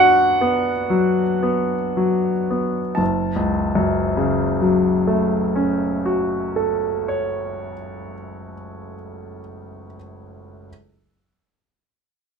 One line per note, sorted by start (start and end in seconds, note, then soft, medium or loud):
0.00 2.94 F#2 soft
0.00 0.41 B3 soft
0.00 3.02 D4 soft
0.00 3.03 F#4 soft
0.00 2.97 F#5 medium
0.41 1.21 B3 soft
0.90 1.75 F#3 soft
1.43 2.30 B3 soft
1.97 2.80 F#3 soft
2.50 2.98 B3 soft
2.95 7.74 F#1 soft
2.95 7.71 A5 soft
3.36 8.12 C#2 soft
3.75 8.52 F#2 soft
4.17 8.93 C#3 soft
4.62 9.38 F#3 soft
5.07 9.84 A3 soft
5.56 9.95 C#4 soft
6.06 9.96 F#4 soft
6.56 9.95 A4 soft
7.08 9.95 C#5 soft